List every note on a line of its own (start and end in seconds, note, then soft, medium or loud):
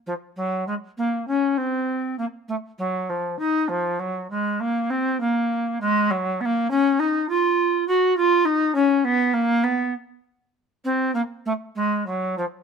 0.06 0.13 F3 medium
0.36 0.66 F#3 medium
0.67 0.74 G#3 medium
0.97 1.27 A#3 medium
1.27 1.59 C#4 medium
1.57 2.17 C4 medium
2.18 2.25 A#3 medium
2.48 2.55 A3 medium
2.78 3.11 F#3 medium
3.09 3.38 F3 medium
3.39 3.70 D#4 medium
3.68 4.00 F3 medium
3.99 4.29 F#3 medium
4.30 4.61 G#3 medium
4.60 4.91 A#3 medium
4.90 5.19 C4 medium
5.20 5.78 A#3 loud
5.80 6.12 G#3 medium
6.10 6.42 F#3 medium
6.40 6.46 B3 medium
6.45 6.70 A#3 loud
6.70 7.01 C#4 medium
6.99 7.28 D#4 loud
7.29 7.86 F4 loud
7.87 8.16 F#4 medium
8.17 8.46 F4 loud
8.45 8.74 D#4 loud
8.75 9.06 C#4 loud
9.04 9.35 B3 loud
9.33 9.65 A#3 medium
9.63 9.93 B3 medium
10.84 11.12 C4 medium
11.14 11.21 A#3 medium
11.45 11.52 A3 medium
11.75 12.06 G#3 medium
12.06 12.37 F#3 medium
12.37 12.44 F3 medium